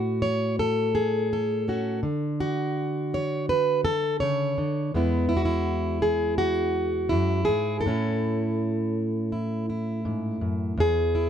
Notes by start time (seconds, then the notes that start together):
Already playing: A2 F#4
0.22 C#5
0.59 A4
0.95 G#4
1.33 A4
1.68 C#4 F#4
2.03 D3
2.40 F#4
3.14 C#5
3.49 B4
3.85 A4
4.20 C#3 C#5
4.58 D3
4.94 E2 G#3 B3 E4
5.29 E4
5.37 F#4
5.45 E4
6.02 G#4
6.38 F#4
7.09 F#2 E4
7.45 G#2 G#4
7.81 A4
7.86 A2 C#4 E4
9.32 E4
9.70 E4
10.05 G#2
10.41 F#2
10.78 E2 G#4
11.15 E4